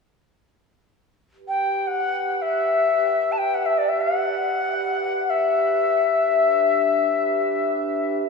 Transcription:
1.30 G4 B4
1.48 G5
1.87 F#5
2.32 F#5
2.42 E5
3.32 A5
3.38 G5
3.54 F#5
3.66 E5
3.78 D5
3.89 E5
4.01 F#5
5.30 E5
6.19 D4

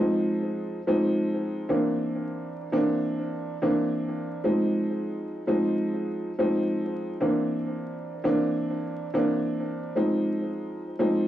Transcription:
Already playing: F3 G#3 C4 D#4
0.87 F3 G#3 C4 D#4
1.69 E3 A#3 C4 D4
2.72 E3 A#3 C4 D4
3.62 E3 A#3 C4 D4
4.44 F3 G#3 C4 D#4
5.47 F3 G#3 C4 D#4
6.39 F3 G#3 C4 D#4
7.20 E3 A#3 C4 D4
8.24 E3 A#3 C4 D4
9.14 E3 A#3 C4 D4
9.96 F3 G#3 C4 D#4
10.99 F3 G#3 C4 D#4

